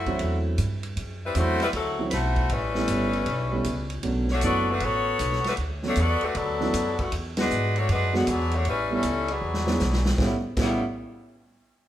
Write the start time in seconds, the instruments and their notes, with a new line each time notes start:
Already playing: upright bass F#2, saxophone section A3 E4 F#4 C5
0.06 upright piano F#3 A3 C4 D4 E4, kick, ride
0.19 upright bass E2, kick, ride
0.58 upright bass G2, kick, hi-hat pedal, ride
0.83 ride
0.97 upright bass F#2, kick, ride
1.24 saxophone section G3 C4 E4 B4
1.35 upright bass E2, upright piano F#3 A3 C4 D4 E4, saxophone section A3 E4 F#4 C5, kick, hi-hat pedal, ride
1.60 saxophone section G3 C4 E4 B4, snare, ride
1.73 upright bass D2, saxophone section F#3 C4 E4 A4, kick, ride
1.99 upright piano F#3 A3 C4 D4 E4
2.09 upright bass B1, saxophone section A3 E4 F#4 B4 C5, kick, snare, hi-hat pedal, ride
2.36 kick, ride
2.49 upright bass A1, saxophone section G3 C#4 E4 B4, kick, ride
2.75 upright piano G3 A3 B3 C#4 E4, snare
2.88 upright bass G1, kick, hi-hat pedal, ride
3.13 ride
3.26 upright bass B1, kick, ride
3.52 upright piano G3 A3 B3 C#4 E4
3.64 upright bass C#2, kick, hi-hat pedal, ride
3.90 ride
4.03 upright bass B1, upright piano F#3 A3 B3 C#4 D4, kick, ride
4.28 saxophone section A3 D4 F#4 C#5, snare
4.41 upright bass F#1, upright piano F#3 A3 B3 C#4 E4, saxophone section B3 F#4 A4 D5, kick, hi-hat pedal, ride
4.69 saxophone section A3 D4 F#4 B4
4.80 upright bass A1, saxophone section B3 F#4 A4 C#5, kick, ride
5.19 upright bass B1, kick, hi-hat pedal, ride
5.32 snare
5.44 saxophone section A3 D4 F#4 B4, muted upright bass stroke, snare, ride
5.57 upright bass D2, kick, ride
5.82 upright piano F#3 A3 B3 C#4 D4, saxophone section A3 D4 F#4 C#5, snare
5.95 upright bass E2, saxophone section B3 F#4 A4 D5, kick, hi-hat pedal, ride
6.21 saxophone section A3 D4 F#4 B4, muted upright bass stroke, ride
6.35 upright bass D2, saxophone section F#3 B3 D4 A4, kick, ride
6.60 upright piano F#3 A3 B3 C#4 E4, snare
6.74 upright bass F#2, kick, hi-hat pedal, ride
6.99 saxophone section D3 A3 B3 F#4, kick, ride
7.12 upright bass E2, kick, ride
7.37 upright piano F#3 G#3 B3 D4 E4, saxophone section G#3 D4 F#4 B4, snare, ride
7.50 upright bass G#2, hi-hat pedal
7.76 saxophone section A3 D4 F#4 C#5, ride
7.89 upright bass F#2, saxophone section G#3 D4 F#4 B4, kick, ride
8.13 saxophone section D3 G#3 B3 F#4, upright piano F#3 G#3 B3 D4 F#4, snare
8.27 upright bass E2, saxophone section F#3 B3 D4 G#4, kick, hi-hat pedal, ride
8.51 saxophone section A3 D4 F#4 C#5, ride
8.65 upright bass A1, saxophone section G3 C#4 E4 B4, kick, ride
8.90 upright piano G3 A3 B3 C#4 E4, saxophone section G3 C#4 E4 A4
9.03 upright bass C#2, kick, hi-hat pedal, ride
9.28 saxophone section F#3 B3 D4 G#4, ride
9.41 upright bass E2
9.54 snare
9.67 upright piano F#3 G#3 B3 D4 E4, snare
9.79 upright bass B1, snare, hi-hat pedal
9.93 snare
10.05 snare
10.18 upright bass A1, saxophone section C#3 G3 B3 E4, upright piano G3 A3 B3 C#4 E4, kick, snare
10.57 upright bass A1, saxophone section C#3 G3 B3 E4, upright piano G3 A3 B3 C#4 E4, kick, snare, crash